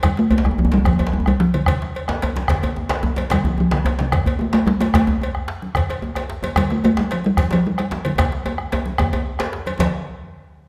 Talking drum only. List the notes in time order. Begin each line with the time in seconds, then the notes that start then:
0.05 G3
0.19 A3
0.32 A3
0.46 G3
0.59 F3
0.74 G3
0.87 F3
1.01 F3
1.14 G3
1.27 G3
1.40 F3
1.54 D3
1.69 C3
3.33 G3
3.47 F3
3.60 F3
3.73 D3
4.00 C3
4.13 C3
4.41 A3
4.54 A3
4.67 G3
4.81 A3
4.95 A3
6.57 G3
6.72 A3
6.85 A3
6.99 G3
7.13 F3
7.26 G3
7.40 F3
7.53 F3
7.67 G3
7.80 G3
7.92 F3
8.05 D3
8.20 C3
9.79 F3